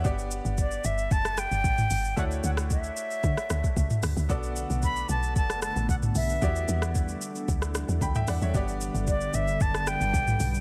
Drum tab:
HH |--------------o-|--------------o-|--------------o-|--------------o-|
SH |xxxxxxxxxxxxxxxx|xxxxxxxxxxxxxxxx|xxxxxxxxxxxxxxxx|xxxxxxxxxxxxxxxx|
SD |---------rr-----|---r-----rr---r-|---------rr-----|---r-----rr---r-|
T2 |-------------o--|-------------o--|-------------o--|-------------o--|
BD |o---o---o---o---|o---o---o--oo---|o---o---o---o---|o---o---o---o---|

HH |--------------o-|
SH |xxxxxxxxxxxxxxxx|
SD |---------rr-----|
T2 |-------------o--|
BD |o---o---o---o---|